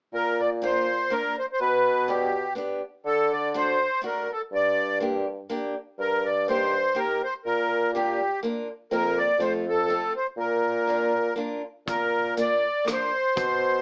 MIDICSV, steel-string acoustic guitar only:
0, 0, Header, 1, 2, 480
1, 0, Start_track
1, 0, Key_signature, -2, "major"
1, 0, Tempo, 488599
1, 121, Time_signature, 3, 2, 24, 8
1, 9718, Tempo, 495458
1, 13520, End_track
2, 0, Start_track
2, 0, Title_t, "Steel-string acoustic guitar"
2, 0, Program_c, 0, 25
2, 605, Note_on_c, 0, 58, 54
2, 612, Note_on_c, 0, 62, 42
2, 623, Note_on_c, 0, 65, 59
2, 841, Note_off_c, 0, 58, 0
2, 841, Note_off_c, 0, 62, 0
2, 849, Note_off_c, 0, 65, 0
2, 1083, Note_on_c, 0, 58, 51
2, 1092, Note_on_c, 0, 62, 44
2, 1097, Note_on_c, 0, 65, 52
2, 1319, Note_off_c, 0, 58, 0
2, 1324, Note_off_c, 0, 62, 0
2, 1326, Note_off_c, 0, 65, 0
2, 2042, Note_on_c, 0, 59, 53
2, 2048, Note_on_c, 0, 62, 52
2, 2062, Note_on_c, 0, 67, 61
2, 2275, Note_off_c, 0, 59, 0
2, 2278, Note_off_c, 0, 62, 0
2, 2284, Note_off_c, 0, 67, 0
2, 2506, Note_on_c, 0, 59, 47
2, 2516, Note_on_c, 0, 62, 48
2, 2534, Note_on_c, 0, 67, 60
2, 2744, Note_off_c, 0, 59, 0
2, 2750, Note_off_c, 0, 62, 0
2, 2758, Note_off_c, 0, 67, 0
2, 3481, Note_on_c, 0, 57, 57
2, 3484, Note_on_c, 0, 62, 44
2, 3490, Note_on_c, 0, 66, 67
2, 3710, Note_off_c, 0, 62, 0
2, 3711, Note_off_c, 0, 57, 0
2, 3715, Note_off_c, 0, 66, 0
2, 3944, Note_on_c, 0, 57, 52
2, 3958, Note_on_c, 0, 62, 42
2, 3967, Note_on_c, 0, 66, 53
2, 4181, Note_off_c, 0, 57, 0
2, 4188, Note_off_c, 0, 62, 0
2, 4193, Note_off_c, 0, 66, 0
2, 4916, Note_on_c, 0, 58, 53
2, 4924, Note_on_c, 0, 62, 43
2, 4935, Note_on_c, 0, 67, 58
2, 5149, Note_off_c, 0, 58, 0
2, 5153, Note_off_c, 0, 62, 0
2, 5158, Note_off_c, 0, 67, 0
2, 5398, Note_on_c, 0, 58, 58
2, 5404, Note_on_c, 0, 62, 51
2, 5414, Note_on_c, 0, 67, 61
2, 5633, Note_off_c, 0, 58, 0
2, 5636, Note_off_c, 0, 62, 0
2, 5640, Note_off_c, 0, 67, 0
2, 6366, Note_on_c, 0, 58, 52
2, 6376, Note_on_c, 0, 63, 45
2, 6390, Note_on_c, 0, 67, 61
2, 6601, Note_off_c, 0, 58, 0
2, 6606, Note_off_c, 0, 63, 0
2, 6613, Note_off_c, 0, 67, 0
2, 6824, Note_on_c, 0, 58, 54
2, 6832, Note_on_c, 0, 63, 36
2, 6839, Note_on_c, 0, 67, 55
2, 7071, Note_off_c, 0, 58, 0
2, 7072, Note_off_c, 0, 63, 0
2, 7077, Note_off_c, 0, 67, 0
2, 7808, Note_on_c, 0, 58, 56
2, 7815, Note_on_c, 0, 62, 54
2, 7823, Note_on_c, 0, 65, 62
2, 8039, Note_off_c, 0, 58, 0
2, 8043, Note_off_c, 0, 62, 0
2, 8047, Note_off_c, 0, 65, 0
2, 8279, Note_on_c, 0, 58, 58
2, 8291, Note_on_c, 0, 62, 43
2, 8296, Note_on_c, 0, 65, 52
2, 8515, Note_off_c, 0, 58, 0
2, 8521, Note_off_c, 0, 62, 0
2, 8522, Note_off_c, 0, 65, 0
2, 8755, Note_on_c, 0, 58, 61
2, 8764, Note_on_c, 0, 60, 54
2, 8774, Note_on_c, 0, 65, 74
2, 9148, Note_off_c, 0, 58, 0
2, 9149, Note_off_c, 0, 60, 0
2, 9156, Note_off_c, 0, 65, 0
2, 9237, Note_on_c, 0, 57, 62
2, 9246, Note_on_c, 0, 60, 56
2, 9255, Note_on_c, 0, 65, 65
2, 9469, Note_off_c, 0, 57, 0
2, 9473, Note_off_c, 0, 60, 0
2, 9478, Note_off_c, 0, 65, 0
2, 9709, Note_on_c, 0, 57, 46
2, 9719, Note_on_c, 0, 60, 52
2, 9726, Note_on_c, 0, 65, 60
2, 9943, Note_off_c, 0, 57, 0
2, 9948, Note_off_c, 0, 60, 0
2, 9952, Note_off_c, 0, 65, 0
2, 10670, Note_on_c, 0, 58, 52
2, 10682, Note_on_c, 0, 62, 47
2, 10693, Note_on_c, 0, 65, 58
2, 10902, Note_off_c, 0, 58, 0
2, 10908, Note_off_c, 0, 62, 0
2, 10914, Note_off_c, 0, 65, 0
2, 11138, Note_on_c, 0, 58, 58
2, 11154, Note_on_c, 0, 62, 47
2, 11159, Note_on_c, 0, 65, 54
2, 11379, Note_off_c, 0, 58, 0
2, 11387, Note_off_c, 0, 62, 0
2, 11390, Note_off_c, 0, 65, 0
2, 12118, Note_on_c, 0, 58, 49
2, 12124, Note_on_c, 0, 62, 47
2, 12135, Note_on_c, 0, 65, 54
2, 12350, Note_off_c, 0, 58, 0
2, 12353, Note_off_c, 0, 62, 0
2, 12358, Note_off_c, 0, 65, 0
2, 12579, Note_on_c, 0, 58, 47
2, 12592, Note_on_c, 0, 62, 43
2, 12601, Note_on_c, 0, 65, 48
2, 12822, Note_off_c, 0, 58, 0
2, 12828, Note_off_c, 0, 62, 0
2, 12832, Note_off_c, 0, 65, 0
2, 13520, End_track
0, 0, End_of_file